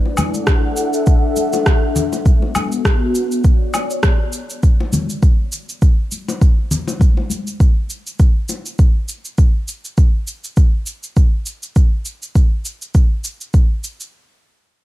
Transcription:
0.00 3.21 D4 medium
0.00 0.84 E4 medium
0.00 0.84 B4 medium
0.00 0.83 D5 medium
0.06 high bongo soft
0.17 3.21 F#5 medium
0.17 high conga medium
0.17 low conga medium
0.17 cabasa medium
0.17 low woodblock medium
0.29 3.21 A4 medium
0.34 3.21 E5 medium
0.34 cabasa soft
0.47 kick loud
0.47 cross-stick loud
0.47 cabasa soft
0.77 cabasa medium
0.93 cabasa soft
1.06 kick loud
1.06 cabasa soft
1.36 high conga soft
1.36 cabasa medium
1.53 high bongo medium
1.53 cabasa soft
1.66 kick loud
1.66 cross-stick loud
1.66 cabasa soft
1.96 low conga medium
1.96 cabasa medium
2.13 high bongo medium
2.13 cabasa soft
2.25 4.63 B3 medium
2.25 kick medium
2.25 high conga medium
2.25 cabasa soft
2.40 4.63 F#4 medium
2.40 high bongo soft
2.55 high conga medium
2.55 cabasa medium
2.55 low woodblock medium
2.72 cabasa soft
2.85 kick medium
2.85 cross-stick loud
2.85 cabasa soft
3.15 cabasa medium
3.32 4.63 C#5 medium
3.32 4.63 D5 medium
3.32 cabasa soft
3.44 kick loud
3.44 cabasa soft
3.74 high bongo soft
3.74 cabasa medium
3.74 low woodblock medium
3.90 cabasa soft
4.03 kick loud
4.03 cross-stick loud
4.03 cabasa soft
4.33 cabasa medium
4.50 cabasa soft
4.63 kick medium
4.63 cabasa soft
4.80 high bongo soft
4.93 high conga medium
4.93 low conga medium
4.93 cabasa medium
5.10 cabasa soft
5.23 kick medium
5.23 cabasa soft
5.52 cabasa medium
5.69 cabasa soft
5.82 kick medium
5.82 cabasa soft
6.12 high conga soft
6.12 cabasa medium
6.28 high bongo medium
6.28 cabasa soft
6.41 kick medium
6.41 cabasa soft
6.71 low conga medium
6.71 cabasa medium
6.88 high bongo medium
6.88 cabasa soft
7.00 kick medium
7.00 high conga soft
7.00 cabasa soft
7.17 high bongo soft
7.30 high conga medium
7.30 cabasa medium
7.47 cabasa soft
7.60 kick medium
7.60 cabasa soft
7.90 cabasa medium
8.07 cabasa soft
8.19 kick medium
8.19 cabasa soft
8.49 high bongo soft
8.49 cabasa medium
8.66 cabasa soft
8.79 kick medium
8.79 cabasa soft
9.09 cabasa medium
9.25 cabasa soft
9.38 kick medium
9.38 cabasa soft
9.68 cabasa medium
9.85 cabasa soft
9.98 kick medium
9.98 cabasa soft
10.27 cabasa medium
10.44 cabasa soft
10.57 kick medium
10.57 cabasa soft
10.86 cabasa medium
11.03 cabasa soft
11.17 kick medium
11.17 cabasa soft
11.46 cabasa medium
11.63 cabasa soft
11.76 kick medium
11.76 cabasa soft
12.05 cabasa medium
12.23 cabasa soft
12.35 kick medium
12.35 cabasa soft
12.65 cabasa medium
12.82 cabasa soft
12.95 kick medium
12.95 cabasa soft
13.24 cabasa medium
13.41 cabasa soft
13.54 kick medium
13.54 cabasa soft
13.84 cabasa medium
14.01 cabasa soft

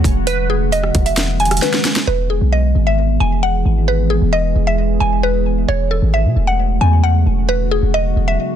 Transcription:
0.00 0.25 C#3 medium
0.00 0.25 F#3 medium
0.00 0.25 A3 medium
0.00 2.04 F#4 medium
0.00 0.23 C#5 medium
0.00 0.24 F#5 medium
0.04 0.91 E1 loud
0.04 kick medium
0.04 closed hi-hat medium
0.27 2.06 D#3 medium
0.27 2.06 G#3 medium
0.27 2.06 B3 medium
0.27 0.48 B4 loud
0.27 1.13 B4 loud
0.27 closed hi-hat medium
0.50 0.71 G#4 medium
0.72 1.04 D#5 loud
0.72 closed hi-hat medium
0.84 cross-stick medium
0.95 1.60 E1 loud
0.95 kick loud
0.95 closed hi-hat soft
0.95 open hi-hat medium
1.06 1.38 E5 medium
1.06 closed hi-hat medium
1.17 snare loud
1.17 closed hi-hat medium
1.40 1.61 G#5 medium
1.40 closed hi-hat soft
1.45 closed hi-hat medium
1.51 cross-stick medium
1.51 closed hi-hat medium
1.57 closed hi-hat medium
1.62 2.05 B4 medium
1.62 snare medium
1.62 closed hi-hat medium
1.74 snare medium
1.85 snare loud
1.96 snare loud
2.07 2.40 E1 loud
2.07 5.65 E3 medium
2.07 5.65 G#3 medium
2.07 5.65 B3 medium
2.07 5.65 G#4 medium
2.07 2.29 B4 loud
2.30 2.51 G#4 medium
2.41 2.74 B1 loud
2.52 2.84 D#5 medium
2.75 3.18 G#1 loud
2.87 3.18 E5 medium
3.20 3.64 E1 loud
3.20 3.41 G#5 medium
3.43 3.85 F#5 medium
3.65 4.20 G#1 loud
3.88 4.09 B4 loud
4.10 4.31 G#4 medium
4.22 4.54 E1 loud
4.33 4.65 D#5 loud
4.56 4.99 E1 loud
4.67 4.99 E5 medium
5.00 5.66 E1 loud
5.00 5.22 G#5 medium
5.23 5.66 B4 medium
5.68 6.01 E1 loud
5.68 7.47 C#3 medium
5.68 7.47 F#3 medium
5.68 7.47 A3 medium
5.68 8.56 F#4 medium
5.68 5.90 C#5 loud
5.91 6.12 A4 medium
6.02 6.26 G#1 loud
6.14 6.45 E5 medium
6.25 6.36 B2 loud
6.36 6.79 E1 loud
6.47 6.79 F#5 medium
6.81 7.24 E2 loud
6.81 7.02 G#5 medium
7.04 7.46 F#5 medium
7.26 7.80 E1 loud
7.49 8.56 D#3 medium
7.49 8.56 G#3 medium
7.49 8.56 B3 medium
7.49 7.70 B4 loud
7.71 7.93 G#4 medium
7.83 8.15 E1 loud
7.94 8.26 D#5 loud
8.16 8.38 E1 loud
8.28 8.56 E5 medium

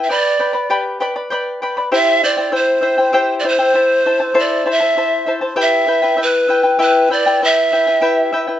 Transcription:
0.04 0.12 E5 medium
0.09 0.38 B4 medium
0.09 0.39 D5 medium
0.09 0.79 D5 loud
0.09 0.38 G5 medium
0.09 0.39 B5 medium
0.39 0.53 B4 medium
0.39 0.53 D5 medium
0.39 0.55 G5 medium
0.39 0.52 B5 medium
0.53 0.69 B4 soft
0.53 0.69 D5 medium
0.53 0.70 B5 medium
0.70 1.01 G4 medium
0.70 0.99 B4 medium
0.70 1.01 D5 medium
0.70 0.99 G5 medium
0.70 1.01 B5 medium
1.00 1.16 B4 medium
1.00 1.15 D5 medium
1.00 1.16 G5 medium
1.00 1.15 B5 medium
1.16 1.30 B4 soft
1.16 1.31 D5 soft
1.16 1.31 B5 medium
1.30 1.61 B4 medium
1.30 1.62 D5 medium
1.30 1.61 G5 medium
1.30 1.62 B5 medium
1.62 1.77 B4 medium
1.62 1.77 D5 medium
1.62 1.77 G5 medium
1.62 1.76 B5 medium
1.77 1.92 B4 soft
1.77 1.92 D5 soft
1.77 1.91 B5 medium
1.92 2.22 E4 medium
1.92 2.23 G4 medium
1.92 2.23 C5 medium
1.92 2.21 E5 medium
1.92 2.26 E5 loud
1.92 2.22 G5 medium
2.22 2.37 E4 medium
2.22 2.36 C5 medium
2.22 2.54 D5 medium
2.22 2.38 E5 medium
2.22 2.36 G5 medium
2.37 2.51 E4 soft
2.37 2.51 C5 soft
2.37 2.52 G5 medium
2.52 2.81 E4 medium
2.52 2.81 C5 medium
2.52 3.35 C5 medium
2.52 2.80 E5 medium
2.52 2.81 G5 medium
2.81 2.97 E4 medium
2.81 2.98 C5 medium
2.81 2.98 E5 medium
2.81 2.97 G5 medium
2.98 3.12 E4 soft
2.98 3.13 C5 soft
2.98 3.13 G5 medium
3.13 3.43 E4 medium
3.13 3.44 G4 medium
3.13 3.44 C5 medium
3.13 3.42 E5 medium
3.13 3.44 G5 medium
3.40 3.50 D5 medium
3.40 3.59 E5 medium
3.44 3.59 E4 medium
3.44 3.58 C5 medium
3.44 4.41 C5 loud
3.44 3.58 G5 medium
3.59 3.74 E4 medium
3.59 3.74 C5 medium
3.59 3.75 G5 medium
3.74 4.05 E4 medium
3.74 4.05 C5 medium
3.74 4.04 E5 medium
3.74 4.05 A5 medium
4.06 4.20 E4 medium
4.06 4.20 C5 medium
4.06 4.21 E5 medium
4.06 4.19 A5 medium
4.20 4.34 E4 soft
4.20 4.34 C5 soft
4.20 4.34 A5 medium
4.34 4.65 E4 medium
4.34 4.65 A4 medium
4.34 4.65 C5 medium
4.34 4.64 E5 medium
4.34 4.66 A5 medium
4.39 4.68 D5 medium
4.65 4.81 E4 medium
4.65 4.80 C5 medium
4.65 4.81 E5 medium
4.65 4.79 A5 medium
4.71 5.34 E5 loud
4.80 4.96 E4 soft
4.80 4.97 C5 soft
4.80 4.96 A5 medium
4.97 5.26 E4 medium
4.97 5.26 C5 medium
4.97 5.25 E5 medium
4.97 5.27 A5 medium
5.26 5.41 E4 medium
5.26 5.41 C5 medium
5.26 5.42 E5 medium
5.26 5.40 A5 medium
5.41 5.55 E4 soft
5.41 5.56 C5 medium
5.41 5.56 A5 medium
5.56 5.86 E4 medium
5.56 5.88 G4 medium
5.56 5.87 B4 medium
5.56 5.85 E5 medium
5.56 5.87 G5 medium
5.62 6.24 E5 loud
5.87 6.03 E4 medium
5.87 6.02 B4 medium
5.87 6.03 E5 medium
5.87 6.01 G5 medium
6.02 6.16 E4 soft
6.02 6.16 B4 medium
6.02 6.17 G5 medium
6.17 6.47 E4 medium
6.17 6.48 B4 medium
6.17 6.47 E5 medium
6.17 6.49 G5 medium
6.23 6.81 B4 medium
6.48 6.63 E4 medium
6.48 6.62 B4 medium
6.48 6.64 E5 medium
6.48 6.62 G5 medium
6.63 6.78 E4 soft
6.63 6.78 B4 soft
6.63 6.79 G5 medium
6.79 7.09 E4 medium
6.79 7.10 G4 medium
6.79 7.09 B4 medium
6.79 7.09 E5 medium
6.79 7.10 G5 medium
7.10 7.26 E4 medium
7.10 7.25 B4 medium
7.10 7.46 D5 medium
7.10 7.25 E5 soft
7.10 7.25 G5 medium
7.26 7.41 E4 soft
7.26 7.41 B4 soft
7.26 7.41 G5 medium
7.42 7.72 E4 medium
7.42 7.72 B4 medium
7.42 7.71 E5 medium
7.42 8.60 E5 medium
7.42 7.72 G5 medium
7.72 7.87 E4 medium
7.72 7.87 B4 medium
7.72 7.87 E5 medium
7.72 7.86 G5 medium
7.87 8.00 E4 soft
7.87 8.01 B4 soft
7.87 8.01 G5 medium
8.01 8.32 E4 medium
8.01 8.32 G4 medium
8.01 8.32 B4 medium
8.01 8.31 E5 medium
8.01 8.32 G5 medium
8.32 8.47 E4 medium
8.32 8.47 B4 medium
8.32 8.48 E5 medium
8.32 8.46 G5 medium
8.47 8.60 E4 medium
8.47 8.60 B4 soft
8.47 8.60 G5 medium

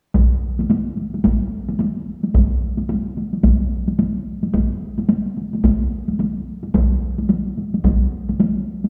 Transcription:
0.14 taiko medium
0.14 taiko high medium
0.59 taiko high soft
0.70 taiko high medium
0.97 taiko high soft
1.14 taiko high soft
1.25 taiko medium
1.25 taiko high medium
1.69 taiko high soft
1.79 taiko high medium
2.23 taiko high soft
2.34 taiko medium
2.34 taiko high medium
2.78 taiko high soft
2.89 taiko high medium
3.17 taiko high soft
3.33 taiko high soft
3.44 taiko medium
3.44 taiko high medium
3.88 taiko high soft
3.99 taiko high medium
4.43 taiko high soft
4.54 taiko medium
4.54 taiko high medium
4.98 taiko high soft
5.09 taiko high medium
5.37 taiko high soft
5.53 taiko high soft
5.64 taiko medium
5.64 taiko high medium
6.08 taiko high soft
6.19 taiko high medium
6.63 taiko high soft
6.74 taiko medium
6.74 taiko high soft
7.18 taiko high soft
7.29 taiko high medium
7.57 taiko high soft
7.74 taiko high soft
7.84 taiko medium
7.84 taiko high medium
8.29 taiko high soft
8.40 taiko high medium
8.84 taiko high soft

